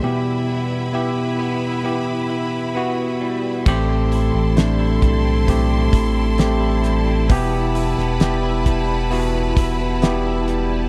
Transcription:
<<
  \new Staff \with { instrumentName = "String section" } { \time 4/4 \key e \minor \tempo 4 = 66 << { <b' b''>1 | <a' c'''>1 | <b' b''>1 | } \\ { <e' e''>1 | <e' a''>1~ | <e' a''>1 | } >> }
  \new Staff \with { instrumentName = "Tine electric piano" } { \time 4/4 \key e \minor <b e' g'>4 <b e' g'>4 <b e' g'>4 <b e' fis'>4 | <a c' g'>4 <a c' d'>4 <a c' g'>4 <a c' g'>4 | <b e' g'>4 <b e' g'>4 <b e' fis'>4 <b e' g'>4 | }
  \new Staff \with { instrumentName = "Tine electric piano" } { \clef bass \time 4/4 \key e \minor b,4. r2 r8 | <a, e>4. r2 r8 | b,4. r2 r8 | }
  \new Staff \with { instrumentName = "Clean electric guitar" } { \time 4/4 \key e \minor e,8 b8 e'8 b8 e8 e'8 b8 g8 | a,16 c'16 e'16 c'16 g16 e'16 g16 c'16 a,16 c'16 e'16 c'16 g16 e'16 g16 c'16 | e,16 b16 e'16 b16 g16 e'16 g16 b16 e,16 b16 e'16 b16 g16 e'16 g16 b16 | }
  \new Staff \with { instrumentName = "Sub bass" } { \clef bass \time 4/4 \key e \minor r1 | a,,8. a,,8. b,,4 a,,4. | e,,8. e,,16 e,,4. e,,4. | }
  \new DrumStaff \with { instrumentName = "Drums" } \drummode { \time 4/4 r4 r4 r4 r4 | <cymc bd>8 <hho hhp>8 <hho hhp sn>8 <hho hhp bd>8 <hho hhp bd>8 <hho hhp bd>8 <hho hhp sn>8 <hho hhp>8 | <hho hhp bd>8 <hho hhp>16 sn16 <hho hhp sn>8 <hho hhp bd>8 <hho hhp>8 <hho hhp bd>8 <hho hhp sn>8 <hho hhp>8 | }
>>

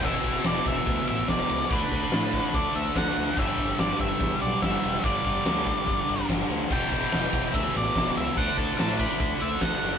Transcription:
<<
  \new Staff \with { instrumentName = "Lead electric guitar" } { \time 4/4 \key e \minor \tempo 4 = 144 e''4 d''8 e''4 e''8 d''4 | b'2 d''8 e''8 fis''4 | e''4 d''8 e''4 d''8 e''4 | d''2. r4 |
g''2 e''8 d''4 e''8 | fis''8 a''8 a''8 b''4 e''8 fis''4 | }
  \new Staff \with { instrumentName = "Distorted electric guitar" } { \clef bass \time 4/4 \key e \minor <e, b, e>1 | <d a d'>1 | <g, d g>1 | <g, d g>1 |
<e, b, e>1 | <d a d'>1 | }
  \new Staff \with { instrumentName = "Fingered electric bass" } { \clef bass \time 4/4 \key e \minor e,,8 e,,8 e,,8 e,,8 d,8 a,,8 e,,8 cis,8 | d,8 d,8 a,4 d,8 d,8 d,8 d,8 | g,,8 g,,8 g,,8 g,,8 e,8 b,,8 g,,8 e,,8 | g,,8 g,,8 d,4 g,,8 g,,8 g,,8 d,8 |
e,,8 e,,8 e,,8 e,,8 d,8 a,,8 e,,8 cis,8 | d,8 d,8 a,4 d,8 d,8 d,8 fis,,8 | }
  \new DrumStaff \with { instrumentName = "Drums" } \drummode { \time 4/4 <cymc bd>8 <bd cymr>8 <cymr sn>8 <bd cymr>8 <bd cymr>8 cymr8 <bd cymr sn>8 cymr8 | <bd cymr>8 <bd cymr>16 sn16 <cymr sn>8 <bd cymr>8 <bd cymr>8 cymr8 <bd cymr sn>8 cymr8 | <bd cymr>8 <bd cymr>16 sn16 <cymr sn>8 <bd cymr>8 <bd cymr>8 cymr8 <bd cymr sn>8 cymr8 | <bd cymr>8 <bd cymr>16 sn16 <cymr sn>8 <bd cymr>8 <bd cymr>8 cymr8 <bd cymr sn>8 cymr8 |
<cymc bd>8 <bd cymr>8 <cymr sn>8 <bd cymr>8 <bd cymr>8 cymr8 <bd cymr sn>8 cymr8 | <bd cymr>8 <bd cymr>8 <cymr sn>8 <bd cymr>8 <bd cymr>8 cymr8 <bd cymr sn>8 cymr8 | }
>>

